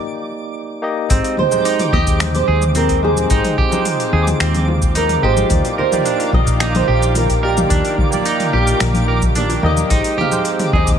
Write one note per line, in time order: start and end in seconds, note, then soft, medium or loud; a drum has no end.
0.00 0.82 A#3 medium
0.00 0.82 D#4 medium
0.00 0.83 G4 medium
0.00 1.12 D5 medium
0.82 1.07 A#3 medium
0.82 1.07 D#4 medium
0.82 1.07 G4 medium
0.82 1.08 D#5 loud
1.09 1.20 G#1 loud
1.09 1.48 G#3 medium
1.09 5.46 G#3 medium
1.09 5.46 C4 medium
1.09 1.35 C4 medium
1.09 1.49 D#4 medium
1.09 1.49 G4 medium
1.09 1.49 C5 medium
1.09 3.28 G5 loud
1.09 10.99 D6 medium
1.09 kick loud
1.09 open hi-hat medium
1.09 cabasa medium
1.24 open hi-hat soft
1.24 cabasa soft
1.37 1.93 C5 loud
1.37 mid tom medium
1.37 high bongo soft
1.37 low conga medium
1.51 1.66 G#3 medium
1.51 1.66 D#4 medium
1.51 1.67 G4 medium
1.51 1.67 C5 medium
1.51 high conga medium
1.51 cabasa medium
1.65 1.90 D#4 medium
1.65 open hi-hat medium
1.65 cabasa medium
1.79 mid tom medium
1.79 open hi-hat soft
1.79 high bongo medium
1.79 cabasa soft
1.93 2.41 D#2 loud
1.93 2.19 G4 loud
1.93 2.35 D#5 loud
1.93 kick loud
1.93 high conga medium
2.07 kick loud
2.07 open hi-hat soft
2.07 cabasa medium
2.20 finger snap medium
2.20 mid tom medium
2.20 open hi-hat medium
2.20 cabasa medium
2.35 2.73 C5 loud
2.35 open hi-hat soft
2.35 high bongo medium
2.35 high conga medium
2.35 cabasa soft
2.48 3.23 D#2 medium
2.48 2.63 G#4 medium
2.62 mid tom medium
2.62 cabasa medium
2.75 3.00 C4 medium
2.75 3.04 A#4 medium
2.75 open hi-hat medium
2.75 high bongo medium
2.75 high conga medium
2.75 cabasa medium
2.89 kick medium
2.89 open hi-hat soft
2.89 cabasa soft
3.03 3.27 G#3 medium
3.03 3.27 D#4 medium
3.03 3.28 G4 medium
3.03 3.82 G#4 medium
3.03 3.28 C5 medium
3.03 mid tom medium
3.17 high conga medium
3.17 cabasa medium
3.30 3.40 G#1 medium
3.30 3.69 G#3 medium
3.30 3.55 D#4 loud
3.30 3.69 D#4 medium
3.30 9.87 F4 medium
3.30 3.70 C5 medium
3.30 3.69 G5 medium
3.30 kick loud
3.30 open hi-hat medium
3.30 high bongo medium
3.30 cabasa medium
3.44 mid tom medium
3.44 open hi-hat soft
3.44 cabasa soft
3.58 3.84 G4 loud
3.58 kick loud
3.58 low conga medium
3.72 4.92 G#3 medium
3.72 4.93 D#4 medium
3.72 4.93 C5 medium
3.72 4.93 G5 medium
3.72 high bongo medium
3.72 high conga loud
3.72 cabasa medium
3.85 mid tom medium
3.85 open hi-hat medium
3.85 cabasa medium
4.00 open hi-hat soft
4.00 cabasa soft
4.13 4.32 D#2 loud
4.13 4.28 G#4 medium
4.27 mid tom medium
4.27 open hi-hat soft
4.27 high bongo medium
4.27 cabasa medium
4.40 5.16 D#2 medium
4.40 4.65 C4 medium
4.40 finger snap medium
4.40 open hi-hat medium
4.40 cabasa medium
4.54 open hi-hat soft
4.54 high conga loud
4.54 cabasa soft
4.68 mid tom medium
4.68 high bongo medium
4.82 kick loud
4.82 cabasa medium
4.95 5.20 D#4 medium
4.95 5.25 A#4 loud
4.95 open hi-hat medium
4.95 high conga medium
4.95 cabasa medium
5.09 mid tom medium
5.09 open hi-hat soft
5.09 cabasa soft
5.22 5.42 G#1 loud
5.22 5.47 G#3 medium
5.22 5.47 D#4 medium
5.22 5.49 G4 loud
5.22 5.48 G4 medium
5.22 5.78 C5 loud
5.22 5.48 D#5 loud
5.22 high bongo soft
5.37 high conga loud
5.37 cabasa medium
5.50 5.60 D#2 loud
5.50 9.87 D#3 medium
5.50 5.89 A#3 medium
5.50 9.87 A#3 medium
5.50 5.89 D#4 medium
5.50 5.89 G4 medium
5.50 10.99 G4 medium
5.50 9.87 A#4 medium
5.50 5.90 D5 medium
5.50 kick loud
5.50 mid tom medium
5.50 open hi-hat medium
5.50 cabasa medium
5.65 open hi-hat soft
5.65 high bongo medium
5.65 cabasa soft
5.78 5.94 A#4 medium
5.78 6.30 C5 loud
5.78 low conga medium
5.92 6.07 A#3 medium
5.92 6.07 D#4 medium
5.92 6.07 G4 medium
5.92 6.08 D5 medium
5.92 mid tom medium
5.92 high conga loud
5.92 cabasa medium
6.06 6.31 D4 medium
6.06 open hi-hat medium
6.06 cabasa medium
6.20 open hi-hat soft
6.20 high bongo soft
6.20 cabasa soft
6.33 6.81 A#1 loud
6.33 6.73 D#5 loud
6.33 kick loud
6.33 mid tom medium
6.33 high conga medium
6.47 kick loud
6.47 open hi-hat soft
6.47 cabasa medium
6.60 6.85 D#4 loud
6.60 finger snap medium
6.60 open hi-hat medium
6.60 high bongo medium
6.60 cabasa medium
6.75 7.13 C5 loud
6.75 mid tom medium
6.75 open hi-hat soft
6.75 high conga loud
6.75 cabasa soft
6.88 7.64 A#1 medium
6.88 7.14 G4 loud
7.03 cabasa medium
7.15 7.44 A#4 loud
7.15 mid tom medium
7.15 open hi-hat medium
7.15 high bongo soft
7.15 high conga medium
7.15 cabasa medium
7.30 kick medium
7.30 open hi-hat soft
7.30 cabasa soft
7.42 7.67 A#3 medium
7.42 7.67 D#4 medium
7.42 7.68 G4 medium
7.42 8.23 G4 medium
7.42 7.59 A#4 medium
7.42 7.68 D5 medium
7.57 mid tom medium
7.57 high bongo medium
7.57 high conga loud
7.57 cabasa medium
7.69 7.80 D#2 loud
7.69 8.09 D#3 medium
7.69 8.08 A#3 medium
7.69 7.95 D4 medium
7.69 8.09 G4 medium
7.69 8.09 D5 medium
7.69 kick loud
7.69 open hi-hat medium
7.69 cabasa medium
7.85 open hi-hat soft
7.85 cabasa soft
7.98 kick loud
7.98 mid tom medium
7.98 low conga medium
8.11 9.32 D#3 medium
8.11 9.32 A#3 medium
8.11 9.33 G4 medium
8.11 9.33 D5 medium
8.11 high bongo medium
8.11 high conga medium
8.11 cabasa medium
8.26 8.51 D#4 loud
8.26 open hi-hat medium
8.26 cabasa medium
8.40 mid tom medium
8.40 open hi-hat soft
8.40 cabasa soft
8.53 8.72 A#1 loud
8.53 8.80 G4 loud
8.53 high bongo medium
8.67 open hi-hat soft
8.67 cabasa medium
8.80 9.56 A#1 loud
8.80 finger snap medium
8.80 mid tom medium
8.80 open hi-hat medium
8.80 cabasa medium
8.94 open hi-hat soft
8.94 high conga loud
8.94 cabasa soft
9.08 9.24 A#4 medium
9.08 high bongo medium
9.22 kick loud
9.22 mid tom medium
9.22 cabasa medium
9.35 9.61 D4 medium
9.35 9.65 D5 medium
9.35 open hi-hat medium
9.35 high conga medium
9.35 cabasa medium
9.49 open hi-hat soft
9.49 high bongo medium
9.49 cabasa soft
9.63 9.82 D#2 loud
9.63 9.87 A#3 loud
9.63 9.88 D#4 medium
9.63 9.88 G4 medium
9.63 9.88 D#5 loud
9.63 10.16 D#5 loud
9.63 mid tom medium
9.77 high conga medium
9.77 cabasa medium
9.90 10.00 G#1 loud
9.90 10.29 G#3 medium
9.90 10.99 G#3 medium
9.90 10.99 C4 medium
9.90 10.29 D#4 medium
9.90 10.16 D#4 loud
9.90 10.29 G4 medium
9.90 10.29 C5 medium
9.90 kick loud
9.90 open hi-hat medium
9.90 cabasa medium
10.04 open hi-hat soft
10.04 cabasa soft
10.17 10.44 G4 loud
10.17 10.75 F5 loud
10.17 mid tom medium
10.17 high bongo soft
10.17 low conga medium
10.32 10.47 G#3 medium
10.32 10.47 D#4 medium
10.32 10.47 G4 medium
10.32 10.47 C5 medium
10.32 high conga medium
10.32 cabasa medium
10.45 open hi-hat medium
10.45 cabasa medium
10.59 mid tom medium
10.59 open hi-hat soft
10.59 high bongo medium
10.59 cabasa soft
10.73 10.99 D#2 loud
10.73 10.89 G#4 medium
10.73 10.99 D#5 loud
10.73 kick loud
10.73 high conga medium
10.87 kick loud
10.87 open hi-hat soft
10.87 cabasa medium